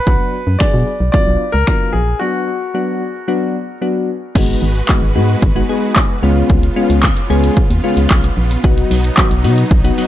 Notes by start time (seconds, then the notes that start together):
Already playing: B4
0.06 B1 F#3 B3 D4 F#4, kick
0.47 F#2
0.59 B2 F#3 B3 D4 G#4 D5, finger snap, kick
0.74 B2
1.00 B1
1.12 F#3 B3 D4 F4 D5, kick
1.27 B1
1.52 C#2 A#4
1.67 F#3 B3 D4 F4, finger snap, kick
1.93 A#1 G#4
2.19 F#3 B3 D4 F#4
2.74 F#3 B3 D4 F#4
3.28 F#3 B3 D4 F#4
3.81 F#3 B3 D4 F#4
4.35 G#1 G#3 B3 D#4 F#4 B4, kick, crash
4.62 G#1
4.89 G#3 B3 D#4 F#4, kick, clap
5.02 G#1
5.15 G#2 G#3 B3 D#4 F#4
5.42 G#1, kick
5.55 G#3 B3 D#4 F#4
5.69 G#3 B3 D#4 G#4
5.96 kick, clap
6.22 C#2 C#3 G#3 B3 C#4 F4
6.50 C#2, kick
6.63 closed hi-hat
6.76 G#3 B3 C#4 F4
6.90 C#2, closed hi-hat
7.03 kick, clap
7.17 closed hi-hat
7.30 C#2 G#3 B3 C#4 G#4
7.44 closed hi-hat
7.57 kick
7.70 D#2, closed hi-hat
7.84 G#3 B3 C#4 F4
7.97 C#2, closed hi-hat
8.11 B1, kick, clap
8.24 closed hi-hat
8.37 A#1
8.51 closed hi-hat
8.64 B1 F#3 B3 D#4 F#4, kick
8.78 closed hi-hat
8.91 B1, open hi-hat
9.04 closed hi-hat
9.17 F#3 B3 D#4 F#4, kick, clap
9.31 B1, closed hi-hat
9.44 B2 F#3 B3 D#4 F#4, open hi-hat
9.58 closed hi-hat
9.71 B1, kick
9.84 F#3 B3 D#4 F#4, closed hi-hat
9.98 F#3 B3 D#4 F#4, open hi-hat